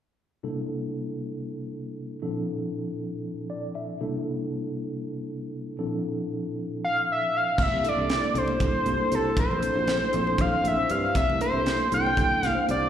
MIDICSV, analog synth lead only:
0, 0, Header, 1, 2, 480
1, 0, Start_track
1, 0, Tempo, 510204
1, 410, Time_signature, 7, 3, 24, 8
1, 12130, End_track
2, 0, Start_track
2, 0, Title_t, "Analog synth lead"
2, 0, Program_c, 0, 81
2, 6440, Note_on_c, 0, 77, 82
2, 6651, Note_off_c, 0, 77, 0
2, 6697, Note_on_c, 0, 76, 77
2, 6931, Note_on_c, 0, 77, 84
2, 6945, Note_off_c, 0, 76, 0
2, 7152, Note_off_c, 0, 77, 0
2, 7175, Note_on_c, 0, 76, 89
2, 7417, Note_on_c, 0, 74, 88
2, 7431, Note_off_c, 0, 76, 0
2, 7883, Note_on_c, 0, 72, 89
2, 7897, Note_off_c, 0, 74, 0
2, 8605, Note_on_c, 0, 69, 81
2, 8619, Note_off_c, 0, 72, 0
2, 8829, Note_off_c, 0, 69, 0
2, 8840, Note_on_c, 0, 72, 92
2, 9790, Note_on_c, 0, 77, 93
2, 9804, Note_off_c, 0, 72, 0
2, 10040, Note_on_c, 0, 76, 94
2, 10055, Note_off_c, 0, 77, 0
2, 10260, Note_on_c, 0, 77, 86
2, 10274, Note_off_c, 0, 76, 0
2, 10496, Note_off_c, 0, 77, 0
2, 10501, Note_on_c, 0, 76, 96
2, 10720, Note_off_c, 0, 76, 0
2, 10738, Note_on_c, 0, 72, 95
2, 11182, Note_off_c, 0, 72, 0
2, 11234, Note_on_c, 0, 79, 106
2, 11723, Note_off_c, 0, 79, 0
2, 11723, Note_on_c, 0, 77, 106
2, 11905, Note_off_c, 0, 77, 0
2, 11956, Note_on_c, 0, 74, 89
2, 12130, Note_off_c, 0, 74, 0
2, 12130, End_track
0, 0, End_of_file